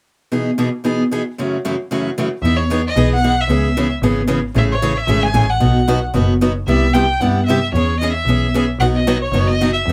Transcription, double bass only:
2.42 2.85 E2 medium
2.96 3.39 B1 medium
3.48 3.91 C#2 medium
4.02 4.45 G#1 medium
4.55 4.98 A1 medium
5.08 5.31 G#1 medium
5.34 5.57 A1 medium
5.61 6.04 B1 medium
6.14 6.57 F#1 medium
6.68 7.10 C2 medium
7.21 7.63 G2 medium
7.73 8.16 E2 medium
8.26 8.69 B1 medium
8.79 9.22 B1 medium
9.32 9.75 F#1 medium
9.86 9.93 E2 medium

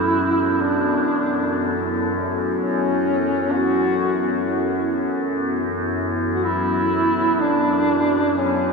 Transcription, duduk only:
0.00 0.63 E4 loud
0.61 2.07 D4 medium
2.56 3.54 C#4 medium
3.52 4.49 F#4 loud
6.35 6.45 F#4 medium
6.44 7.43 E4 loud
7.42 8.39 D4 loud
8.37 8.73 C#4 loud

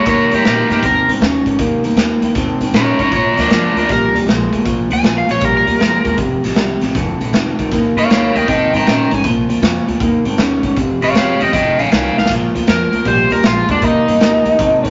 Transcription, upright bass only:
0.06 0.23 D#2 medium
0.33 0.41 G2 medium
0.46 0.63 A#2 medium
0.70 0.79 G2 medium
0.82 1.00 D#2 medium
1.08 1.17 G#2 medium
1.21 1.38 D#2 medium
1.46 1.55 G#2 medium
1.59 1.76 D#2 medium
1.83 1.93 G2 medium
1.95 2.14 D#2 medium
2.21 2.31 D#2 medium
2.35 2.53 D#2 medium
2.60 2.70 G#2 medium
2.73 2.91 A#2 medium
2.99 3.08 G#2 medium
3.12 3.30 A#1 medium
3.37 3.47 D2 medium
3.51 3.68 F2 medium
3.75 3.84 D2 medium
3.89 4.07 A#1 medium
4.14 4.23 D#2 medium
4.27 4.44 A#1 medium
4.52 4.62 D#2 medium
4.65 4.83 A#1 medium
4.90 4.99 D2 medium
5.03 5.21 A#1 medium
5.28 5.38 A#1 medium
5.42 5.60 A#1 medium
5.67 5.76 D#2 medium
5.80 5.98 F2 medium
6.05 6.14 D#2 medium
6.18 6.36 F1 medium
6.43 6.53 A1 medium
6.56 6.74 C2 medium
6.82 6.91 A1 medium
6.95 7.12 F1 medium
7.20 7.29 A#1 medium
7.33 7.51 F1 medium
7.59 7.68 D2 medium
7.72 7.89 D#2 medium
7.95 8.05 G2 medium
8.10 8.27 D#2 medium
8.36 8.44 D#2 medium
8.48 8.65 D#2 medium
8.73 8.82 G#2 medium
8.86 9.03 A#2 medium
9.12 9.21 G#2 medium
9.24 9.42 A#1 medium
9.49 9.58 D2 medium
9.62 9.79 F2 medium
9.88 9.97 D2 medium
10.00 10.18 D#2 medium
10.25 10.34 G#2 medium
10.38 10.56 D#2 medium
10.63 10.73 G#2 medium
10.77 10.94 F1 medium
11.01 11.10 A1 medium
11.14 11.32 F1 medium
11.39 11.48 F1 medium
11.53 11.71 F1 medium
11.78 11.87 A#1 medium
11.91 12.09 C2 medium
12.15 12.25 C2 medium
12.29 12.47 A#1 medium
12.55 12.64 D2 medium
12.68 12.85 F2 medium
12.93 13.02 D2 medium
13.05 13.23 A#1 medium
13.30 13.40 D#2 medium
13.44 13.62 A#1 loud
13.68 13.78 D#2 medium
13.82 14.00 D#2 medium
14.08 14.17 G2 medium
14.20 14.38 D#2 medium
14.45 14.54 D#2 medium
14.59 14.76 D#2 medium
14.84 14.90 G#2 medium

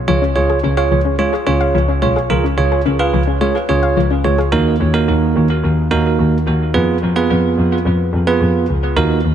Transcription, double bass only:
0.08 0.27 C#2 loud
0.36 0.55 C#2 loud
0.63 0.83 C#2 loud
0.91 1.20 C#2 loud
1.47 1.66 C#2 loud
1.74 1.94 C#2 loud
2.02 2.22 B1 medium
2.30 2.49 C#2 loud
2.58 2.77 C#2 loud
2.85 3.05 C#2 loud
3.13 3.42 C#2 loud
3.69 3.88 C#2 loud
3.97 4.16 C#2 loud
4.24 4.44 C#2 medium
4.52 4.72 D#2 loud
4.80 4.99 D#2 loud
5.08 5.27 D#2 loud
5.36 5.55 D#2 loud
5.63 5.83 D#2 loud
5.91 6.10 D#2 loud
6.19 6.38 D#2 loud
6.47 6.66 D#2 loud
6.74 6.94 F2 loud
7.02 7.22 F2 loud
7.30 7.49 F2 loud
7.58 7.77 F2 loud
7.85 8.05 F2 loud
8.13 8.33 F2 loud
8.41 8.60 F2 loud
8.69 8.88 C#2 medium
8.96 9.16 D#2 loud
9.24 9.35 D#2 loud

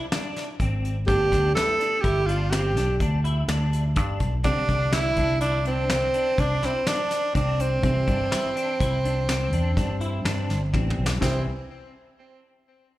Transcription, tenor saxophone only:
1.07 1.52 G4 medium
1.55 2.03 A4 medium
2.01 2.28 G4 medium
2.26 2.52 F4 medium
2.51 3.00 G4 medium
4.44 4.94 D4 medium
4.93 5.40 E4 medium
5.41 5.64 D4 medium
5.67 6.41 C4 medium
6.40 6.67 D4 medium
6.65 6.89 C4 medium
6.87 7.35 D4 loud
7.36 7.62 D4 medium
7.61 10.74 C4 medium
11.21 11.44 C4 medium

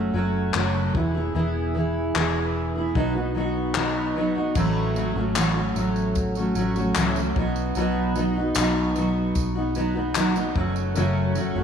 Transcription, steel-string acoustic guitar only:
0.00 0.12 F#3 soft
0.00 0.13 A3 soft
0.00 0.14 C#4 soft
0.00 0.15 F#4 soft
0.13 0.54 F#3 medium
0.13 0.54 A3 medium
0.13 0.54 C#4 medium
0.13 0.55 F#4 medium
0.54 0.95 F#2 medium
0.54 0.95 C#3 medium
0.54 0.94 F#3 medium
0.54 0.95 A3 medium
0.54 0.95 C#4 medium
0.54 0.95 F#4 medium
0.94 1.15 E3 medium
0.94 1.15 B3 medium
0.94 1.15 E4 medium
0.94 1.13 G#4 medium
1.14 1.34 B3 soft
1.14 1.35 E4 soft
1.14 1.35 G#4 medium
1.35 1.73 E3 medium
1.35 1.74 B3 medium
1.35 1.75 E4 medium
1.35 1.76 G#4 medium
1.74 2.14 E3 medium
1.74 2.15 B3 medium
1.74 2.15 E4 medium
1.74 2.16 G#4 medium
2.15 2.75 E3 medium
2.15 2.76 B3 medium
2.15 2.76 E4 medium
2.15 2.74 G#4 medium
2.75 2.95 B3 soft
2.75 2.96 E4 soft
2.75 2.95 G#4 soft
2.95 3.15 B2 medium
2.95 3.15 F#3 medium
2.95 3.16 B3 medium
2.95 3.15 D#4 medium
2.95 3.13 F#4 medium
3.15 3.35 B3 soft
3.15 3.36 D#4 soft
3.15 3.35 F#4 medium
3.35 3.75 F#3 medium
3.35 3.75 B3 medium
3.35 3.75 D#4 medium
3.35 3.76 F#4 medium
3.75 4.15 B2 medium
3.75 4.14 F#3 medium
3.75 4.15 B3 medium
3.75 4.16 D#4 medium
3.75 4.16 F#4 medium
4.16 4.36 F#3 medium
4.16 4.36 B3 medium
4.16 4.35 D#4 medium
4.16 4.34 F#4 medium
4.35 4.56 B3 soft
4.35 4.56 D#4 soft
4.35 4.55 F#4 medium
4.56 4.96 A2 medium
4.56 4.96 E3 medium
4.56 4.94 F#3 medium
4.56 4.95 A3 medium
4.56 4.96 C#4 medium
4.56 4.97 F#4 medium
4.95 5.15 F#3 medium
4.95 5.16 A3 medium
4.95 5.15 C#4 medium
4.95 5.14 F#4 medium
5.15 5.35 F#3 soft
5.15 5.35 A3 soft
5.15 5.36 C#4 medium
5.15 5.36 F#4 medium
5.36 5.56 A2 medium
5.36 5.56 E3 medium
5.36 5.56 F#3 medium
5.36 5.56 A3 medium
5.36 5.55 C#4 medium
5.36 5.54 F#4 medium
5.55 5.74 F#3 soft
5.55 5.76 A3 soft
5.55 5.76 C#4 soft
5.55 5.75 F#4 soft
5.76 6.36 F#3 medium
5.76 6.36 A3 medium
5.76 6.36 C#4 medium
5.76 6.35 F#4 medium
6.37 6.54 F#3 soft
6.37 6.56 A3 soft
6.37 6.56 C#4 soft
6.37 6.56 F#4 medium
6.55 6.76 F#3 medium
6.55 6.76 A3 medium
6.55 6.76 C#4 medium
6.55 6.75 F#4 medium
6.76 6.96 F#3 soft
6.76 6.96 A3 soft
6.76 6.96 C#4 soft
6.76 6.96 F#4 medium
6.96 7.16 A2 medium
6.96 7.16 E3 medium
6.96 7.16 F#3 medium
6.96 7.17 A3 medium
6.96 7.16 C#4 medium
6.96 7.15 F#4 medium
7.16 7.35 F#3 soft
7.16 7.36 A3 soft
7.16 7.36 C#4 soft
7.16 7.36 F#4 soft
7.36 7.75 F#3 medium
7.36 7.76 B3 medium
7.36 7.77 D#4 medium
7.36 7.77 F#4 medium
7.76 8.16 B2 medium
7.76 8.14 F#3 medium
7.76 8.15 B3 medium
7.76 8.16 D#4 medium
7.76 8.17 F#4 medium
8.15 8.35 F#3 medium
8.15 8.36 B3 medium
8.15 8.36 D#4 medium
8.15 8.35 F#4 medium
8.36 8.56 B3 soft
8.36 8.56 D#4 soft
8.36 8.56 F#4 soft
8.56 8.96 B2 medium
8.56 8.94 F#3 medium
8.56 8.95 B3 medium
8.56 8.96 D#4 medium
8.56 8.97 F#4 medium
8.95 9.56 F#3 medium
8.95 9.56 B3 medium
8.95 9.56 D#4 medium
8.95 9.54 F#4 medium
9.55 9.75 B3 soft
9.55 9.76 D#4 medium
9.55 9.75 F#4 medium
9.75 9.95 F#3 medium
9.75 9.96 B3 medium
9.75 9.95 D#4 medium
9.75 9.94 F#4 medium
9.95 10.15 B3 soft
9.95 10.16 D#4 soft
9.95 10.15 F#4 medium
10.16 10.36 B2 medium
10.16 10.36 F#3 medium
10.16 10.36 B3 medium
10.16 10.35 D#4 medium
10.16 10.33 F#4 medium
10.34 10.56 B3 soft
10.34 10.56 D#4 soft
10.34 10.55 F#4 medium
10.55 10.95 F#3 medium
10.55 10.96 A3 medium
10.55 10.96 C#4 medium
10.55 10.97 F#4 medium
10.95 11.35 F#2 medium
10.95 11.36 C#3 medium
10.95 11.34 F#3 medium
10.95 11.35 A3 medium
10.95 11.36 C#4 medium
10.95 11.37 F#4 medium
11.35 11.55 F#3 medium
11.35 11.56 A3 medium
11.35 11.55 C#4 medium
11.35 11.54 F#4 medium
11.55 11.64 F#3 soft
11.55 11.64 A3 medium
11.55 11.64 C#4 medium
11.55 11.64 F#4 medium

